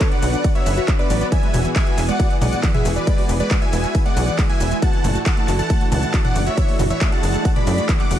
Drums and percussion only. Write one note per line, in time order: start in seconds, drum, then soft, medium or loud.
0.01 kick loud
0.01 clap loud
0.01 closed hi-hat medium
0.01 ride medium
0.01 shaker soft
0.12 closed hi-hat soft
0.22 open hi-hat loud
0.22 shaker medium
0.33 closed hi-hat soft
0.33 shaker soft
0.44 kick loud
0.44 closed hi-hat medium
0.44 ride medium
0.44 shaker soft
0.55 closed hi-hat medium
0.66 open hi-hat loud
0.66 shaker medium
0.77 closed hi-hat medium
0.77 shaker soft
0.88 kick loud
0.88 clap loud
0.88 closed hi-hat medium
0.88 ride medium
0.88 shaker soft
0.99 closed hi-hat soft
1.10 open hi-hat loud
1.10 shaker medium
1.21 closed hi-hat medium
1.21 shaker soft
1.32 kick loud
1.32 closed hi-hat medium
1.32 ride medium
1.32 shaker soft
1.43 closed hi-hat medium
1.54 open hi-hat loud
1.54 mid tom medium
1.54 shaker medium
1.65 closed hi-hat medium
1.65 shaker soft
1.76 kick loud
1.76 clap loud
1.76 closed hi-hat loud
1.76 ride medium
1.76 shaker soft
1.87 closed hi-hat soft
1.98 clap soft
1.98 open hi-hat loud
1.98 shaker medium
2.09 closed hi-hat medium
2.09 shaker soft
2.20 kick loud
2.20 closed hi-hat medium
2.20 ride medium
2.20 shaker soft
2.31 closed hi-hat medium
2.42 open hi-hat loud
2.42 mid tom medium
2.42 shaker medium
2.52 closed hi-hat medium
2.52 shaker soft
2.63 kick loud
2.63 clap loud
2.63 closed hi-hat medium
2.63 ride medium
2.63 shaker soft
2.74 closed hi-hat medium
2.74 mid tom medium
2.85 open hi-hat loud
2.85 shaker medium
2.96 shaker soft
3.07 kick loud
3.07 closed hi-hat medium
3.07 ride medium
3.07 shaker soft
3.18 open hi-hat medium
3.29 open hi-hat loud
3.29 shaker medium
3.40 closed hi-hat medium
3.40 shaker soft
3.51 kick loud
3.51 clap loud
3.51 closed hi-hat medium
3.51 ride medium
3.51 shaker soft
3.62 closed hi-hat medium
3.73 open hi-hat loud
3.73 shaker medium
3.84 closed hi-hat medium
3.84 shaker soft
3.95 kick loud
3.95 closed hi-hat medium
3.95 ride medium
3.95 shaker soft
4.06 closed hi-hat medium
4.17 open hi-hat loud
4.17 shaker medium
4.28 closed hi-hat medium
4.28 shaker soft
4.39 kick loud
4.39 clap loud
4.39 closed hi-hat medium
4.39 ride medium
4.39 shaker soft
4.50 closed hi-hat medium
4.60 open hi-hat loud
4.60 shaker medium
4.71 closed hi-hat medium
4.71 shaker soft
4.82 kick loud
4.82 closed hi-hat loud
4.82 ride medium
4.82 shaker soft
4.93 closed hi-hat medium
5.04 open hi-hat medium
5.04 mid tom medium
5.04 shaker medium
5.15 closed hi-hat medium
5.15 shaker soft
5.26 kick loud
5.26 clap loud
5.26 closed hi-hat loud
5.26 ride medium
5.26 shaker soft
5.37 closed hi-hat medium
5.48 clap soft
5.48 open hi-hat loud
5.48 shaker medium
5.59 closed hi-hat medium
5.59 shaker soft
5.70 kick loud
5.70 closed hi-hat loud
5.70 ride medium
5.70 shaker soft
5.81 closed hi-hat medium
5.92 open hi-hat loud
5.92 mid tom medium
5.92 shaker medium
6.03 closed hi-hat medium
6.03 shaker soft
6.14 kick loud
6.14 clap loud
6.14 closed hi-hat medium
6.14 ride medium
6.14 shaker soft
6.25 closed hi-hat medium
6.25 mid tom medium
6.36 open hi-hat loud
6.36 shaker medium
6.47 closed hi-hat medium
6.47 shaker soft
6.58 kick loud
6.58 closed hi-hat loud
6.58 ride medium
6.58 shaker soft
6.68 open hi-hat medium
6.79 open hi-hat loud
6.79 mid tom medium
6.79 shaker medium
6.90 closed hi-hat medium
6.90 shaker soft
7.01 kick loud
7.01 clap loud
7.01 closed hi-hat loud
7.01 ride medium
7.01 shaker soft
7.12 closed hi-hat medium
7.23 open hi-hat loud
7.23 shaker medium
7.34 closed hi-hat medium
7.34 shaker soft
7.45 kick loud
7.45 closed hi-hat loud
7.45 ride medium
7.45 shaker soft
7.56 closed hi-hat medium
7.56 mid tom medium
7.67 open hi-hat loud
7.67 shaker medium
7.78 closed hi-hat medium
7.78 shaker soft
7.89 kick loud
7.89 clap loud
7.89 closed hi-hat loud
7.89 ride medium
7.89 shaker soft
8.00 clap soft
8.00 closed hi-hat medium
8.11 open hi-hat loud
8.11 shaker medium